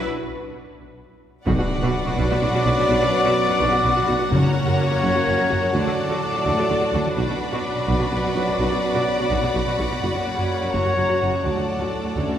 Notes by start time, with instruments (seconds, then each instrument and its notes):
1.45 tuba B1, double bass section B1, trombone section F#2 F#3, cello section B2, timpani B2, french horn section B3 F#4, string section D4 F#4 B4 F#5, viola section F#4, violin section D5 F#5, trumpet section D5, impact
1.58 cello section B2, viola section F#4
1.82 cello section B2, viola section F#4
2.06 cello section B2, viola section F#4
2.17 tuba B1, double bass section B1, cello section B2, viola section F#4
2.30 cello section B2, viola section F#4
2.41 tuba B1, double bass section B1, cello section B2, viola section F#4
2.53 cello section B2, viola section F#4
2.65 tuba B1, double bass section B1, cello section B2, viola section F#4
2.78 cello section B2, viola section F#4
2.88 tuba B1, double bass section B1, cello section B2, viola section F#4
3.01 cello section B2, viola section F#4
3.24 cello section B2, viola section F#4
3.48 cello section B2, viola section F#4
3.60 tuba B1, double bass section B1, cello section B2, viola section F#4
3.71 cello section B2, viola section F#4
3.83 tuba B1, double bass section B1, cello section B2, viola section F#4
3.95 cello section B2, viola section F#4
4.07 double bass section B1, tuba B1, cello section B2, viola section F#4
4.19 cello section B2, viola section F#4
4.30 tuba F#1, double bass section F#1, cello section F#2, timpani F#2, trombone section F#2 F#3, french horn section A#3 F#4, string section C#4 A#4, viola section F#4, trumpet section C#5, violin section C#5 A#5
4.43 cello section F#2, viola section F#4
4.66 cello section F#2, viola section F#4
4.90 cello section F#2, viola section F#4
5.01 tuba F#1, double bass section F#1, cello section F#2, viola section F#4
5.15 cello section F#2, viola section F#4
5.26 tuba F#1, double bass section F#1, cello section F#2, viola section F#4
5.38 cello section F#2, viola section F#4
5.49 tuba F#1, double bass section F#1, cello section F#2, viola section F#4
5.61 cello section F#2, viola section F#4
5.73 tuba D2, double bass section D2, trombone section A2, cello section D3, french horn section A3, string section D4 A4, viola section F#4, trumpet section D5, violin section A5
5.77 violin section D5
5.86 cello section D3, viola section F#4
6.10 cello section D3, viola section F#4
6.33 cello section D3, viola section F#4
6.45 tuba D2, double bass section D2, cello section D3, viola section F#4
6.57 cello section D3, viola section F#4
6.69 tuba D2, double bass section D2, cello section D3, viola section F#4
6.80 cello section D3, viola section F#4
6.93 tuba D2, double bass section D2, cello section D3, viola section F#4
7.05 cello section D3, viola section F#4
7.16 tuba B1, double bass section B1, trombone section F#2 F#3, cello section B2, french horn section B3 F#4, viola section F#4, string section F#4 B4 F#5, violin section D5 B5, trumpet section D5
7.28 cello section B2, viola section F#4
7.51 cello section B2, viola section F#4
7.75 cello section B2, viola section F#4
7.87 tuba B1, double bass section B1, cello section B2, viola section F#4
7.99 cello section B2, viola section F#4
8.11 tuba B1, double bass section B1, cello section B2, viola section F#4
8.23 cello section B2, viola section F#4
8.35 tuba B1, double bass section B1, cello section B2, viola section F#4
8.47 cello section B2, viola section F#4
8.58 tuba B1, double bass section B1, cello section B2, viola section F#4
8.71 cello section B2, viola section F#4
8.94 cello section B2, viola section F#4
9.18 cello section B2, viola section F#4
9.30 tuba B1, double bass section B1, cello section B2, viola section F#4
9.43 cello section B2, viola section F#4
9.54 tuba B1, double bass section B1, cello section B2, viola section F#4
9.66 cello section B2, viola section F#4
9.78 tuba B1, double bass section B1, cello section B2, viola section F#4
9.90 cello section B2, viola section F#4
10.01 tuba F#1, double bass section F#1, cello section F#2, trombone section F#2 F#3, string section A#3, french horn section A#3 F#4, viola section F#4, trumpet section C#5
10.13 cello section F#2, viola section F#4
10.36 cello section F#2, viola section F#4
10.61 cello section F#2, viola section F#4
10.72 tuba F#1, double bass section F#1, cello section F#2, viola section F#4, violin section C#5 A#5
10.85 cello section F#2, viola section F#4
10.96 tuba F#1, double bass section F#1, cello section F#2, viola section F#4
11.08 cello section F#2, viola section F#4
11.21 tuba F#1, double bass section F#1, cello section F#2, viola section F#4
11.32 cello section F#2, viola section F#4
11.44 cello section D2, tuba D2, double bass section D2, trombone section A2, french horn section A3, string section A3 A4, trumpet section D4, viola section F#4, violin section D5 A5
11.56 cello section D2, viola section F#4
11.79 cello section D2, viola section F#4
12.04 cello section D2, viola section F#4
12.14 cello section D2, tuba D2, double bass section D2, trombone section A3, french horn section C#4, viola section F#4, violin section C#5
12.27 cello section D2, viola section F#4